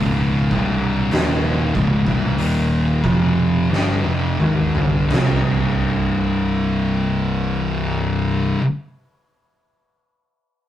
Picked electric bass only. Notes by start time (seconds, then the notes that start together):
Already playing: C#1
0.51 C1
1.12 D#1
1.75 C#1
2.06 C1
2.39 D#1
3.04 F1
3.71 G1
4.04 F1
4.39 G#1
4.74 G1
5.10 C1